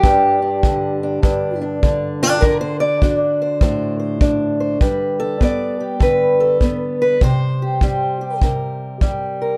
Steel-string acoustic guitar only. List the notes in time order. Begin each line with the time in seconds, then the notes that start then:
Already playing: G4
0.03 G2 D4
0.42 D4
0.64 D3
1.03 D4
1.22 G2 D4
1.61 D4
1.83 D3
2.23 D4 F4
2.41 D3 A#4
2.61 C5
2.80 F#4 D5
3.02 D4 F#4
3.42 C5
3.62 A2 C5
4.00 C5
4.21 D4
4.60 C5
4.81 G3 B4
5.20 A4
5.40 B3 D5
5.80 G4
6.00 D3 B4
6.40 A4
6.61 B3
7.02 B4
7.21 C3 C5
7.62 G4
7.82 G3 G4
8.21 G4
8.43 C3 A#4
9.01 G3
9.42 A#4